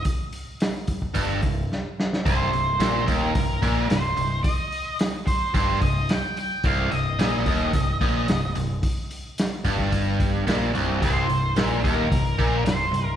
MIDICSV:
0, 0, Header, 1, 5, 480
1, 0, Start_track
1, 0, Key_signature, -3, "minor"
1, 0, Tempo, 548446
1, 42, Time_signature, 4, 2, 24, 8
1, 11520, End_track
2, 0, Start_track
2, 0, Title_t, "Lead electric guitar"
2, 0, Program_c, 0, 29
2, 1976, Note_on_c, 0, 72, 77
2, 2690, Note_off_c, 0, 72, 0
2, 2693, Note_on_c, 0, 70, 76
2, 3413, Note_off_c, 0, 70, 0
2, 3416, Note_on_c, 0, 72, 91
2, 3873, Note_off_c, 0, 72, 0
2, 3877, Note_on_c, 0, 75, 101
2, 4332, Note_off_c, 0, 75, 0
2, 4609, Note_on_c, 0, 72, 76
2, 4849, Note_off_c, 0, 72, 0
2, 4859, Note_on_c, 0, 72, 94
2, 5085, Note_off_c, 0, 72, 0
2, 5089, Note_on_c, 0, 75, 94
2, 5337, Note_on_c, 0, 79, 103
2, 5340, Note_off_c, 0, 75, 0
2, 5581, Note_off_c, 0, 79, 0
2, 5592, Note_on_c, 0, 79, 85
2, 5829, Note_off_c, 0, 79, 0
2, 5833, Note_on_c, 0, 77, 102
2, 6045, Note_on_c, 0, 75, 84
2, 6071, Note_off_c, 0, 77, 0
2, 7454, Note_off_c, 0, 75, 0
2, 9643, Note_on_c, 0, 72, 88
2, 10177, Note_off_c, 0, 72, 0
2, 10177, Note_on_c, 0, 70, 88
2, 10348, Note_off_c, 0, 70, 0
2, 10352, Note_on_c, 0, 70, 78
2, 11073, Note_off_c, 0, 70, 0
2, 11077, Note_on_c, 0, 72, 89
2, 11520, Note_off_c, 0, 72, 0
2, 11520, End_track
3, 0, Start_track
3, 0, Title_t, "Overdriven electric guitar"
3, 0, Program_c, 1, 29
3, 998, Note_on_c, 1, 43, 91
3, 1235, Note_off_c, 1, 43, 0
3, 1251, Note_on_c, 1, 36, 58
3, 1441, Note_off_c, 1, 36, 0
3, 1971, Note_on_c, 1, 36, 103
3, 2203, Note_off_c, 1, 36, 0
3, 2213, Note_on_c, 1, 36, 65
3, 2403, Note_off_c, 1, 36, 0
3, 2447, Note_on_c, 1, 46, 90
3, 2675, Note_off_c, 1, 46, 0
3, 2679, Note_on_c, 1, 39, 89
3, 2918, Note_off_c, 1, 39, 0
3, 2933, Note_on_c, 1, 36, 64
3, 3124, Note_off_c, 1, 36, 0
3, 3167, Note_on_c, 1, 46, 90
3, 3402, Note_off_c, 1, 46, 0
3, 3408, Note_on_c, 1, 36, 63
3, 3603, Note_off_c, 1, 36, 0
3, 3648, Note_on_c, 1, 36, 57
3, 3843, Note_off_c, 1, 36, 0
3, 4847, Note_on_c, 1, 43, 101
3, 5084, Note_off_c, 1, 43, 0
3, 5094, Note_on_c, 1, 36, 68
3, 5287, Note_off_c, 1, 36, 0
3, 5816, Note_on_c, 1, 36, 103
3, 6039, Note_off_c, 1, 36, 0
3, 6049, Note_on_c, 1, 36, 72
3, 6244, Note_off_c, 1, 36, 0
3, 6289, Note_on_c, 1, 46, 90
3, 6525, Note_off_c, 1, 46, 0
3, 6534, Note_on_c, 1, 39, 88
3, 6767, Note_off_c, 1, 39, 0
3, 6774, Note_on_c, 1, 36, 74
3, 6966, Note_off_c, 1, 36, 0
3, 7009, Note_on_c, 1, 46, 93
3, 7244, Note_off_c, 1, 46, 0
3, 7256, Note_on_c, 1, 36, 66
3, 7447, Note_off_c, 1, 36, 0
3, 7486, Note_on_c, 1, 36, 61
3, 7682, Note_off_c, 1, 36, 0
3, 8442, Note_on_c, 1, 43, 83
3, 9157, Note_off_c, 1, 43, 0
3, 9161, Note_on_c, 1, 46, 92
3, 9392, Note_off_c, 1, 46, 0
3, 9395, Note_on_c, 1, 36, 82
3, 9634, Note_off_c, 1, 36, 0
3, 9643, Note_on_c, 1, 36, 102
3, 9866, Note_off_c, 1, 36, 0
3, 9877, Note_on_c, 1, 36, 65
3, 10073, Note_off_c, 1, 36, 0
3, 10121, Note_on_c, 1, 46, 92
3, 10355, Note_off_c, 1, 46, 0
3, 10360, Note_on_c, 1, 39, 91
3, 10590, Note_off_c, 1, 39, 0
3, 10593, Note_on_c, 1, 36, 61
3, 10789, Note_off_c, 1, 36, 0
3, 10840, Note_on_c, 1, 46, 99
3, 11072, Note_off_c, 1, 46, 0
3, 11075, Note_on_c, 1, 36, 65
3, 11269, Note_off_c, 1, 36, 0
3, 11304, Note_on_c, 1, 36, 56
3, 11503, Note_off_c, 1, 36, 0
3, 11520, End_track
4, 0, Start_track
4, 0, Title_t, "Picked electric bass"
4, 0, Program_c, 2, 34
4, 1009, Note_on_c, 2, 31, 76
4, 1231, Note_off_c, 2, 31, 0
4, 1254, Note_on_c, 2, 24, 73
4, 1474, Note_off_c, 2, 24, 0
4, 1974, Note_on_c, 2, 24, 81
4, 2195, Note_off_c, 2, 24, 0
4, 2213, Note_on_c, 2, 24, 68
4, 2435, Note_off_c, 2, 24, 0
4, 2441, Note_on_c, 2, 34, 89
4, 2669, Note_off_c, 2, 34, 0
4, 2701, Note_on_c, 2, 27, 75
4, 2920, Note_off_c, 2, 27, 0
4, 2938, Note_on_c, 2, 24, 72
4, 3159, Note_off_c, 2, 24, 0
4, 3171, Note_on_c, 2, 34, 80
4, 3395, Note_off_c, 2, 34, 0
4, 3407, Note_on_c, 2, 24, 80
4, 3633, Note_off_c, 2, 24, 0
4, 3642, Note_on_c, 2, 24, 69
4, 3871, Note_off_c, 2, 24, 0
4, 4854, Note_on_c, 2, 31, 81
4, 5078, Note_off_c, 2, 31, 0
4, 5095, Note_on_c, 2, 24, 73
4, 5319, Note_off_c, 2, 24, 0
4, 5814, Note_on_c, 2, 24, 86
4, 6038, Note_off_c, 2, 24, 0
4, 6059, Note_on_c, 2, 24, 65
4, 6280, Note_off_c, 2, 24, 0
4, 6292, Note_on_c, 2, 34, 91
4, 6517, Note_off_c, 2, 34, 0
4, 6531, Note_on_c, 2, 27, 75
4, 6756, Note_off_c, 2, 27, 0
4, 6771, Note_on_c, 2, 24, 70
4, 6996, Note_off_c, 2, 24, 0
4, 7012, Note_on_c, 2, 34, 85
4, 7236, Note_off_c, 2, 34, 0
4, 7256, Note_on_c, 2, 24, 79
4, 7478, Note_off_c, 2, 24, 0
4, 7491, Note_on_c, 2, 24, 75
4, 7715, Note_off_c, 2, 24, 0
4, 8442, Note_on_c, 2, 31, 75
4, 9129, Note_off_c, 2, 31, 0
4, 9164, Note_on_c, 2, 34, 89
4, 9389, Note_off_c, 2, 34, 0
4, 9414, Note_on_c, 2, 24, 87
4, 9634, Note_off_c, 2, 24, 0
4, 9646, Note_on_c, 2, 24, 86
4, 9869, Note_off_c, 2, 24, 0
4, 9886, Note_on_c, 2, 24, 63
4, 10108, Note_off_c, 2, 24, 0
4, 10120, Note_on_c, 2, 34, 86
4, 10345, Note_off_c, 2, 34, 0
4, 10367, Note_on_c, 2, 27, 79
4, 10588, Note_off_c, 2, 27, 0
4, 10607, Note_on_c, 2, 24, 72
4, 10827, Note_off_c, 2, 24, 0
4, 10846, Note_on_c, 2, 34, 87
4, 11066, Note_off_c, 2, 34, 0
4, 11070, Note_on_c, 2, 24, 71
4, 11297, Note_off_c, 2, 24, 0
4, 11322, Note_on_c, 2, 24, 77
4, 11520, Note_off_c, 2, 24, 0
4, 11520, End_track
5, 0, Start_track
5, 0, Title_t, "Drums"
5, 42, Note_on_c, 9, 46, 67
5, 46, Note_on_c, 9, 36, 93
5, 129, Note_off_c, 9, 46, 0
5, 134, Note_off_c, 9, 36, 0
5, 285, Note_on_c, 9, 46, 50
5, 373, Note_off_c, 9, 46, 0
5, 529, Note_on_c, 9, 46, 63
5, 541, Note_on_c, 9, 38, 100
5, 616, Note_off_c, 9, 46, 0
5, 628, Note_off_c, 9, 38, 0
5, 765, Note_on_c, 9, 46, 47
5, 771, Note_on_c, 9, 36, 80
5, 853, Note_off_c, 9, 46, 0
5, 859, Note_off_c, 9, 36, 0
5, 892, Note_on_c, 9, 36, 71
5, 980, Note_off_c, 9, 36, 0
5, 1004, Note_on_c, 9, 46, 56
5, 1012, Note_on_c, 9, 36, 78
5, 1091, Note_off_c, 9, 46, 0
5, 1099, Note_off_c, 9, 36, 0
5, 1245, Note_on_c, 9, 46, 45
5, 1252, Note_on_c, 9, 36, 81
5, 1333, Note_off_c, 9, 46, 0
5, 1339, Note_off_c, 9, 36, 0
5, 1505, Note_on_c, 9, 38, 54
5, 1592, Note_off_c, 9, 38, 0
5, 1746, Note_on_c, 9, 38, 77
5, 1834, Note_off_c, 9, 38, 0
5, 1867, Note_on_c, 9, 38, 81
5, 1955, Note_off_c, 9, 38, 0
5, 1977, Note_on_c, 9, 36, 99
5, 1979, Note_on_c, 9, 46, 53
5, 2064, Note_off_c, 9, 36, 0
5, 2067, Note_off_c, 9, 46, 0
5, 2216, Note_on_c, 9, 46, 41
5, 2304, Note_off_c, 9, 46, 0
5, 2452, Note_on_c, 9, 46, 61
5, 2465, Note_on_c, 9, 38, 108
5, 2540, Note_off_c, 9, 46, 0
5, 2552, Note_off_c, 9, 38, 0
5, 2695, Note_on_c, 9, 46, 48
5, 2696, Note_on_c, 9, 36, 89
5, 2782, Note_off_c, 9, 46, 0
5, 2783, Note_off_c, 9, 36, 0
5, 2932, Note_on_c, 9, 46, 63
5, 2935, Note_on_c, 9, 36, 100
5, 3020, Note_off_c, 9, 46, 0
5, 3022, Note_off_c, 9, 36, 0
5, 3174, Note_on_c, 9, 36, 81
5, 3175, Note_on_c, 9, 46, 50
5, 3261, Note_off_c, 9, 36, 0
5, 3263, Note_off_c, 9, 46, 0
5, 3413, Note_on_c, 9, 46, 69
5, 3425, Note_on_c, 9, 38, 99
5, 3500, Note_off_c, 9, 46, 0
5, 3513, Note_off_c, 9, 38, 0
5, 3652, Note_on_c, 9, 46, 49
5, 3739, Note_off_c, 9, 46, 0
5, 3888, Note_on_c, 9, 46, 65
5, 3889, Note_on_c, 9, 36, 107
5, 3976, Note_off_c, 9, 46, 0
5, 3977, Note_off_c, 9, 36, 0
5, 4133, Note_on_c, 9, 46, 49
5, 4221, Note_off_c, 9, 46, 0
5, 4369, Note_on_c, 9, 46, 64
5, 4381, Note_on_c, 9, 38, 102
5, 4457, Note_off_c, 9, 46, 0
5, 4469, Note_off_c, 9, 38, 0
5, 4611, Note_on_c, 9, 36, 90
5, 4616, Note_on_c, 9, 46, 56
5, 4699, Note_off_c, 9, 36, 0
5, 4703, Note_off_c, 9, 46, 0
5, 4851, Note_on_c, 9, 36, 93
5, 4854, Note_on_c, 9, 46, 63
5, 4939, Note_off_c, 9, 36, 0
5, 4941, Note_off_c, 9, 46, 0
5, 5089, Note_on_c, 9, 46, 53
5, 5090, Note_on_c, 9, 36, 89
5, 5177, Note_off_c, 9, 36, 0
5, 5177, Note_off_c, 9, 46, 0
5, 5331, Note_on_c, 9, 46, 63
5, 5343, Note_on_c, 9, 38, 100
5, 5419, Note_off_c, 9, 46, 0
5, 5431, Note_off_c, 9, 38, 0
5, 5574, Note_on_c, 9, 46, 45
5, 5662, Note_off_c, 9, 46, 0
5, 5807, Note_on_c, 9, 46, 56
5, 5810, Note_on_c, 9, 36, 95
5, 5895, Note_off_c, 9, 46, 0
5, 5898, Note_off_c, 9, 36, 0
5, 6051, Note_on_c, 9, 46, 47
5, 6139, Note_off_c, 9, 46, 0
5, 6295, Note_on_c, 9, 46, 54
5, 6307, Note_on_c, 9, 38, 95
5, 6383, Note_off_c, 9, 46, 0
5, 6395, Note_off_c, 9, 38, 0
5, 6529, Note_on_c, 9, 36, 79
5, 6530, Note_on_c, 9, 46, 49
5, 6617, Note_off_c, 9, 36, 0
5, 6617, Note_off_c, 9, 46, 0
5, 6769, Note_on_c, 9, 36, 100
5, 6769, Note_on_c, 9, 46, 63
5, 6856, Note_off_c, 9, 46, 0
5, 6857, Note_off_c, 9, 36, 0
5, 7009, Note_on_c, 9, 36, 81
5, 7011, Note_on_c, 9, 46, 50
5, 7096, Note_off_c, 9, 36, 0
5, 7099, Note_off_c, 9, 46, 0
5, 7248, Note_on_c, 9, 46, 61
5, 7260, Note_on_c, 9, 38, 107
5, 7335, Note_off_c, 9, 46, 0
5, 7348, Note_off_c, 9, 38, 0
5, 7486, Note_on_c, 9, 46, 52
5, 7573, Note_off_c, 9, 46, 0
5, 7728, Note_on_c, 9, 36, 95
5, 7728, Note_on_c, 9, 46, 68
5, 7815, Note_off_c, 9, 46, 0
5, 7816, Note_off_c, 9, 36, 0
5, 7970, Note_on_c, 9, 46, 49
5, 8058, Note_off_c, 9, 46, 0
5, 8210, Note_on_c, 9, 46, 67
5, 8222, Note_on_c, 9, 38, 98
5, 8298, Note_off_c, 9, 46, 0
5, 8310, Note_off_c, 9, 38, 0
5, 8441, Note_on_c, 9, 46, 54
5, 8445, Note_on_c, 9, 36, 87
5, 8529, Note_off_c, 9, 46, 0
5, 8533, Note_off_c, 9, 36, 0
5, 8566, Note_on_c, 9, 36, 73
5, 8653, Note_off_c, 9, 36, 0
5, 8685, Note_on_c, 9, 46, 57
5, 8686, Note_on_c, 9, 36, 78
5, 8773, Note_off_c, 9, 46, 0
5, 8774, Note_off_c, 9, 36, 0
5, 8926, Note_on_c, 9, 36, 85
5, 8927, Note_on_c, 9, 46, 47
5, 9013, Note_off_c, 9, 36, 0
5, 9015, Note_off_c, 9, 46, 0
5, 9169, Note_on_c, 9, 46, 61
5, 9181, Note_on_c, 9, 38, 99
5, 9256, Note_off_c, 9, 46, 0
5, 9269, Note_off_c, 9, 38, 0
5, 9409, Note_on_c, 9, 46, 48
5, 9497, Note_off_c, 9, 46, 0
5, 9645, Note_on_c, 9, 36, 97
5, 9648, Note_on_c, 9, 46, 60
5, 9732, Note_off_c, 9, 36, 0
5, 9736, Note_off_c, 9, 46, 0
5, 9885, Note_on_c, 9, 46, 45
5, 9973, Note_off_c, 9, 46, 0
5, 10120, Note_on_c, 9, 46, 61
5, 10132, Note_on_c, 9, 38, 105
5, 10207, Note_off_c, 9, 46, 0
5, 10219, Note_off_c, 9, 38, 0
5, 10365, Note_on_c, 9, 36, 86
5, 10368, Note_on_c, 9, 46, 47
5, 10452, Note_off_c, 9, 36, 0
5, 10455, Note_off_c, 9, 46, 0
5, 10604, Note_on_c, 9, 36, 102
5, 10606, Note_on_c, 9, 46, 57
5, 10692, Note_off_c, 9, 36, 0
5, 10694, Note_off_c, 9, 46, 0
5, 10844, Note_on_c, 9, 36, 81
5, 10849, Note_on_c, 9, 46, 45
5, 10932, Note_off_c, 9, 36, 0
5, 10937, Note_off_c, 9, 46, 0
5, 11080, Note_on_c, 9, 46, 63
5, 11092, Note_on_c, 9, 38, 96
5, 11167, Note_off_c, 9, 46, 0
5, 11180, Note_off_c, 9, 38, 0
5, 11324, Note_on_c, 9, 46, 49
5, 11412, Note_off_c, 9, 46, 0
5, 11520, End_track
0, 0, End_of_file